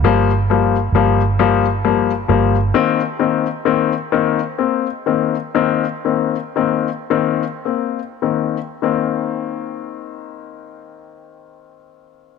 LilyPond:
<<
  \new Staff \with { instrumentName = "Grand piano" } { \time 6/8 \key c \minor \tempo 4. = 41 <f g bes>8 <f g bes>8 <f g bes>8 <f g bes>8 <f g bes>8 <f g bes>8 | <ees bes c'>8 <ees bes c'>8 <ees bes c'>8 <ees bes c'>8 <bes c'>8 <ees bes c'>8 | <ees bes c'>8 <ees bes c'>8 <ees bes c'>8 <ees bes c'>8 <bes c'>8 <ees bes c'>8 | <ees bes c'>2. | }
  \new Staff \with { instrumentName = "Fingered electric bass" } { \clef bass \time 6/8 \key c \minor g,,4 g,,4. g,,8 | r2. | r2. | r2. | }
>>